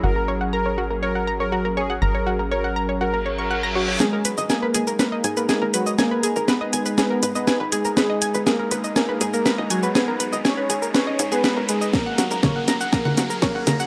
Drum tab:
HH |----------------|----------------|--x---x---x---x-|--x---x---x---x-|
SH |----------------|----------------|x-xxx-xxx-xxx-xx|x-xxx-xxx-xxx-xx|
SD |----------------|----------------|o---o---o---o---|o---o---o---o---|
CG |----------------|----------------|----------------|----------------|
BD |----------------|----------------|----------------|----------------|

HH |--x---x---x---x-|--x---x---x---x-|--x---x---x---x-|
SH |x-xxx-xxx-xxx-xx|x-xxx-xxx-xxx-xx|x-xxx-xxx-xxx-xx|
SD |o---o---o---o---|o---o---o---o---|o-o-o-o-o-o-o-o-|
CG |----------------|----------------|----O----O----O-|
BD |----------------|----------------|o---o---o---o---|